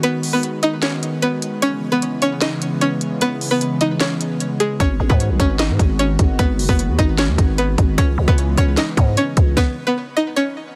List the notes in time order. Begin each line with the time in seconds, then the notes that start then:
Already playing: D#3 G#3 B3 F#4
0.03 B3 B4, closed hi-hat
0.23 open hi-hat
0.33 B3 B4
0.43 closed hi-hat
0.63 D#4 D#5, closed hi-hat
0.82 C#4 C#5, snare, clap, closed hi-hat
1.03 closed hi-hat
1.22 B3 B4, closed hi-hat
1.42 closed hi-hat
1.62 C#3 E3 C#4 C#5, closed hi-hat
1.92 B3 B4
2.02 closed hi-hat
2.22 C#4 C#5, closed hi-hat
2.41 D#4 D#5, snare, clap, closed hi-hat
2.62 closed hi-hat
2.81 C#4 C#5, closed hi-hat
3.01 closed hi-hat
3.21 B3 B4, closed hi-hat
3.41 open hi-hat
3.51 B3 B4
3.61 closed hi-hat
3.81 D#4 D#5, closed hi-hat
4.00 C#4 C#5, snare, clap, closed hi-hat
4.21 closed hi-hat
4.40 closed hi-hat
4.60 G#3 G#4, closed hi-hat
4.80 G#1 D#3 C#4 F#4 C#5, kick, closed hi-hat
5.00 G#1
5.09 G#2 B3 B4, kick
5.20 closed hi-hat
5.30 B1
5.40 G#1 C#4 C#5, kick, closed hi-hat
5.59 D#4 D#5, snare, clap, closed hi-hat
5.69 G#2
5.79 G#1, kick, closed hi-hat
5.99 C#4 C#5, closed hi-hat
6.19 G#1, kick, closed hi-hat
6.39 G#1 B3 B4, kick, closed hi-hat
6.59 F#1, open hi-hat
6.69 F#1 B3 B4, kick
6.79 closed hi-hat
6.89 D#2
6.99 G#1 D#4 D#5, kick, closed hi-hat
7.18 C#4 C#5, snare, clap, closed hi-hat
7.28 D#2
7.38 G#1, kick, closed hi-hat
7.58 B3 B4, closed hi-hat
7.78 G#1, kick, closed hi-hat
7.98 C#2 C#3 E3 G#3 B3 C#4 C#5, kick, closed hi-hat
8.18 C#2
8.28 C#2 B3 B4, kick
8.38 closed hi-hat
8.57 C#2 C#4 C#5, kick, closed hi-hat
8.77 D#4 D#5, snare, clap, closed hi-hat
8.97 G#2, kick, closed hi-hat
9.17 C#4 C#5, closed hi-hat
9.37 C#2, kick, closed hi-hat
9.57 B3 B4, kick, snare
9.87 B3 B4
10.17 D#4 D#5
10.36 C#4 C#5